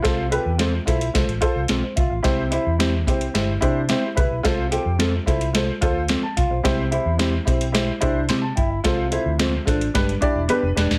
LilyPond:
<<
  \new Staff \with { instrumentName = "Upright piano" } { \time 4/4 \key c \major \tempo 4 = 109 << { r2. a'16 c''16 e''16 f''16~ | f''16 r2. r8. | r2. r16 a''16 f''16 c''16~ | c''16 r2 r8. c'''16 a''16 g''16 e''16~ |
e''16 r2. r8. | } \\ { <f' a' c''>8 <f' a' b'>8 <f' a' c''>8 <f' a' c''>8 <f' a' c''>8 <f' a' c''>8 r4 | <e' g' c''>8 <e' g' c''>8 <e' g' c''>8 <e' g' c''>8 <e' g' c''>8 <e' g' c''>8 <e' g' c''>8 <e' g' b'>8 | <f' a' c''>8 <f' a' c''>8 <f' a' c''>8 <f' a' c''>8 <f' a' c''>8 <f' a' c''>8 r4 | <e' g' c''>8 <e' g' c''>8 <e' g' c''>8 <e' g' c''>8 <e' g' c''>8 <e' g' c''>8 r4 |
<f' a' c''>8 <f' a' c''>8 <f' a' c''>8 <f' a' c''>8 <d' g' b'>8 <d' g' d''>8 <d' g' b'>8 <d' g' b'>8 | } >> }
  \new Staff \with { instrumentName = "Upright piano" } { \clef bass \time 4/4 \key c \major c4. r2 r8 | c4. r2 r8 | c4. r2 r8 | c4. r2 r8 |
c4. r8 g,4. r8 | }
  \new Staff \with { instrumentName = "Clean electric guitar" } { \time 4/4 \key c \major r4 <c' f' a' c''>16 r4. r16 <c' f' a' c''>16 r8. | r4 <c' e' g' c''>16 r4. r16 <c' e' g' c''>16 r8. | r4 <c' f' a' c''>16 r4. r16 <c' f' a' c''>16 r8. | r4 <c' e' g' c''>16 r4. r16 <c' e' g' c''>16 r8. |
r4 <c' f' a' c''>16 r4. r16 <b d' g' b'>16 r8. | }
  \new Staff \with { instrumentName = "Clean electric guitar" } { \time 4/4 \key c \major f'8 g'8 r8 e'8 r8 f'8 r8 f'8 | c'8 e'8 r8 c'8 r8 d'8 r8 e'8 | f'8 g'8 r8 e'8 r8 f'8 r8 f'8 | c'8 e'8 r8 c'8 r8 d'8 r8 e'8 |
f'8 e'8 r8 d'8 r8 e'8 r8 d'8 | }
  \new Staff \with { instrumentName = "Fingered electric bass" } { \clef bass \time 4/4 \key c \major c,8. e,8. b,,8 c,16 a,,16 r16 c,16 b,,16 r16 c,16 a,,16 | c,8. e,8. c,8 g,,8 c8. r16 c,16 b,,16 | c,8. f,8. c,4 d,8. r16 c,16 b,,16 | c,8. e,8. b,,4 c,8 c8 g,,8 |
c,8. d,8. a,,8 g,,8 r16 e,,16 r16 f,,16 e,,16 ees,,16 | }
  \new DrumStaff \with { instrumentName = "Drums" } \drummode { \time 4/4 <hh bd sn>8 hh8 <hh sn>8 <hh bd sn>16 hh16 <hh bd sn>16 hh16 <hh bd>8 <hh sn>8 <hh bd>8 | <hh bd sn>8 hh8 <hh sn>8 <hh bd sn>16 hh16 <hh sn>8 <hh bd>8 <hh sn>8 <hh bd>8 | <hh bd sn>8 hh8 <hh sn>8 <hh bd sn>16 hh16 <hh sn>8 <hh bd>8 <hh sn>8 <hh bd>8 | <hh bd sn>8 hh8 <hh sn>8 <hh bd sn>16 hh16 <hh sn>8 <hh bd>8 <hh sn>8 <hh bd>8 |
<hh bd sn>8 hh8 <hh sn>8 <hh bd sn>16 hh16 <hh bd sn>16 hh16 <hh bd>8 hh8 <hh sn>16 sn16 | }
>>